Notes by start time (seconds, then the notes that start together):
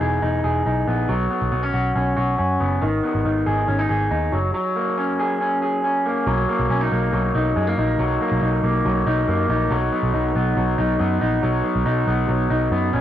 Already playing: E3 B3 D#4
0.01 E1 G#4
0.22 E1 D#4
0.44 E1 G#4
0.66 B1 D#4
0.87 A#1 B3
1.08 B1 F#3
1.30 B3
1.42 B1
1.52 B1 B3
1.63 C#4
1.74 B1 F#4
1.95 B1 C#4
2.17 B1 F#4
2.38 F#2 C#4
2.60 F#1 B3
2.81 G#1 D#3
3.03 B3
3.15 G#1
3.25 G#1 D#4
3.46 G#1 G#4
3.68 G#1 C#4
3.79 D#4
3.89 G#1 G#4
4.11 D#2 D#4
4.32 F#1 F#3
4.54 F#3
4.76 A#3
4.98 C#4
5.19 G#4
5.41 C#4
5.62 G#4
5.84 C#4
6.06 A#3
6.27 B1 F#3
6.49 A#3
6.60 B1
6.70 B1 C#4
6.81 D#4
6.92 B1 A#3
7.13 B1 F#3
7.35 B1 D#4
7.56 F#2 G#3
7.67 A#3
7.78 A#1 D#4
7.99 B1 F#3
8.21 A#3
8.32 B1
8.42 B1 D#4
8.63 B1 A#3
8.85 B1 F#3
9.07 B1 D#4
9.28 F#2 A#3
9.49 A#1 D#4
9.71 B1 F#3
9.92 B3
10.03 B1
10.14 B1 D#4
10.35 B1 B3
10.57 B1 F#3
10.78 B1 D#4
10.99 F#2 B3
11.21 A#1 D#4
11.43 B1 F#3
11.64 B3
11.76 B1
11.86 B1 D#4
12.07 B1 B3
12.29 B1 F#3
12.50 B1 D#4
12.71 F#2 B3
12.93 A#1 C#4